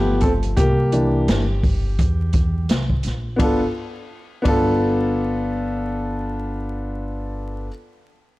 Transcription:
Already playing: G1 F3 A3 B3 G4
0.21 C4 A4, kick, closed hi-hat
0.43 closed hi-hat
0.57 C2 A#3 G4, kick, closed hi-hat
0.92 E3 A#3 D4, closed hi-hat
1.28 G1, snare, closed hi-hat
1.63 kick, open hi-hat
1.99 E2, kick, closed hi-hat
2.33 kick, closed hi-hat
2.69 C2, snare, closed hi-hat
2.90 kick
3.03 A#1, snare, closed hi-hat
3.36 G1 B3 D4, kick, ride
3.40 F4 A4
4.42 G1 B3 D4, kick, ride
4.46 F4 A4

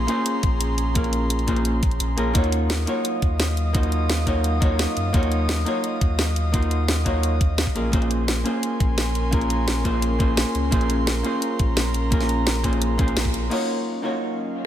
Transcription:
Already playing: C#4 G#4 A#5 C6
0.07 A#3 C#4 F4 G#4 C5, closed hi-hat
0.26 closed hi-hat
0.43 A#1, kick, closed hi-hat
0.61 closed hi-hat
0.78 closed hi-hat
0.94 A#3 C#4 F4 G#4 A#4, kick, closed hi-hat
1.04 closed hi-hat
1.13 closed hi-hat
1.30 closed hi-hat
1.39 closed hi-hat
1.47 A#3 C#4 F4 G#4 C5, kick, closed hi-hat
1.56 closed hi-hat
1.65 closed hi-hat
1.83 kick, closed hi-hat
1.91 closed hi-hat
2.00 A#1, closed hi-hat
2.17 A#1 A#3 C#4 F4 G#4 A#4, closed hi-hat
2.33 D#2 F#3 A#3 D#4 F4 F#4 C#5 D#5 F5 D#6, kick, closed hi-hat
2.44 closed hi-hat
2.52 closed hi-hat
2.70 snare, closed hi-hat
2.86 A#3 D#4 F4 F#4 C#5, closed hi-hat
3.05 closed hi-hat
3.22 D#2, kick, closed hi-hat
3.40 snare, closed hi-hat
3.57 closed hi-hat
3.73 A#3 D#4 F4 F#4 C5, kick, closed hi-hat
3.83 closed hi-hat
3.92 closed hi-hat
4.10 snare, closed hi-hat
4.26 A#3 D#4 F4 F#4 C#5, kick, closed hi-hat
4.44 closed hi-hat
4.60 A#3 D#4 F4 F#4 C#5, kick, closed hi-hat
4.79 snare, closed hi-hat
4.97 F#2, closed hi-hat
5.13 D#2 A#3 D#4 F4 F#4 C#5, kick, closed hi-hat
5.23 closed hi-hat
5.32 closed hi-hat
5.49 snare, closed hi-hat
5.65 A#3 D#4 F4 F#4 C#5, closed hi-hat
5.84 closed hi-hat
6.01 D#2, kick, closed hi-hat
6.19 snare, closed hi-hat
6.36 closed hi-hat
6.52 A#3 D#4 F4 F#4 C5, kick, closed hi-hat
6.63 closed hi-hat
6.71 closed hi-hat
6.88 snare, closed hi-hat
7.05 A#3 D#4 F4 F#4 C#5, kick, closed hi-hat
7.23 closed hi-hat
7.41 kick, closed hi-hat
7.58 snare, closed hi-hat
7.67 kick
7.75 A#1 A#3 C#4 F4 G#4 A#4 G#5 C6, closed hi-hat
7.92 A#1 A#3 C#4 F4 G#4 C5, kick, closed hi-hat
8.02 closed hi-hat
8.11 closed hi-hat
8.28 snare, closed hi-hat
8.44 A#3 C#4 F4 G#4 C5, closed hi-hat
8.63 closed hi-hat
8.80 A#1, kick, closed hi-hat
8.98 snare, closed hi-hat
9.15 closed hi-hat
9.31 A#3 C#4 F4 G#4 A#4, kick, closed hi-hat
9.41 closed hi-hat
9.50 closed hi-hat
9.68 snare, closed hi-hat
9.84 A#3 C#4 F4 G#4 C5, kick, closed hi-hat
10.02 closed hi-hat
10.19 A#3 C#4 F4 G#4 C5, kick, closed hi-hat
10.37 snare, closed hi-hat
10.55 C#2 A#5, closed hi-hat
10.71 A#1 A#3 C#4 F4 G#4 C5, kick, closed hi-hat
10.81 closed hi-hat
10.90 closed hi-hat
11.07 snare, closed hi-hat
11.23 A#3 C#4 F4 G#4 C5, closed hi-hat
11.42 closed hi-hat
11.59 A#1, kick, closed hi-hat
11.77 snare, closed hi-hat
11.94 closed hi-hat
12.10 A#3 C#4 F4 G#4 A#4, kick, closed hi-hat
12.21 snare, closed hi-hat
12.29 closed hi-hat
12.47 snare, closed hi-hat
12.55 closed hi-hat
12.63 A#3 C#4 F4 G#4 C5, kick, closed hi-hat
12.73 closed hi-hat
12.82 closed hi-hat
12.98 A#3 C#4 F4 G#4 C5, kick, closed hi-hat
13.08 closed hi-hat
13.16 A#1, snare, closed hi-hat
13.25 kick
13.34 A#1, closed hi-hat
13.50 F#3 A#3 C#4 D#4 F4 F#4 C#5 D#5 F5, crash
14.02 A#3 D#4 F4 F#4 C#5

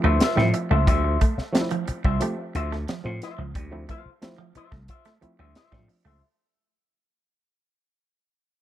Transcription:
Already playing: F3 A3 C4 E4
0.03 D2 A3 F4 B4 C5 E5
0.19 F4 C5 E5, muted slap bass stroke, snare, closed hi-hat, cowbell
0.36 A2 E3 G3 A3 C4 E4, snare
0.42 F3
0.54 E5, muted clean electric guitar stroke, closed hi-hat
0.71 C#2 A3 F4 C5 E5
0.87 D2 G3 F4 C5 E5, kick, closed hi-hat
1.04 muted clean electric guitar stroke
1.21 A3, kick, closed hi-hat
1.38 muted slap bass stroke, muted clean electric guitar stroke, snare
1.53 F3 A3 C4 D4, muted clean electric guitar stroke, snare, closed hi-hat
1.61 E4
1.71 F3, muted clean electric guitar stroke, closed hi-hat
1.88 muted clean electric guitar stroke, muted slap bass stroke, closed hi-hat
2.04 C2 G3 F4 C5 E5, kick
2.20 F3 A3 C4 G4, muted clean electric guitar stroke, closed hi-hat
2.39 muted clean electric guitar stroke
2.55 D2 F4 C5 E5, muted clean electric guitar stroke, closed hi-hat
2.72 A3, muted clean electric guitar stroke, snare
2.88 F3, muted clean electric guitar stroke, snare, closed hi-hat
3.04 A2 F3 A3 C4 F4, muted clean electric guitar stroke
3.22 F4 C5 E5, snare, closed hi-hat
3.38 C#2 F3, muted clean electric guitar stroke
3.55 D2 G3, kick, closed hi-hat
3.71 F3 A3 C4 E4, muted clean electric guitar stroke
3.89 A3 F4 C5 F5, kick, closed hi-hat
4.06 muted slap bass stroke
4.22 F3 A3 C4 E4, muted clean electric guitar stroke, snare, closed hi-hat
4.38 F3, muted clean electric guitar stroke
4.55 F4 C5 E5, muted slap bass stroke, muted clean electric guitar stroke, closed hi-hat
4.72 C2 A3, muted clean electric guitar stroke, kick, snare
4.88 F4 C5 E5, kick, closed hi-hat
5.05 A3, snare, closed hi-hat
5.21 F3 A3 C4 E4, muted slap bass stroke, muted clean electric guitar stroke, closed hi-hat
5.39 D2 G3 F4 C5 E5
5.55 F4 C5 E5, snare, closed hi-hat
5.72 A2 E3 G3 A3 C4 D4, kick, snare
5.78 F3
5.89 muted clean electric guitar stroke, open hi-hat
6.05 C#2 A3 F4 C5 E5

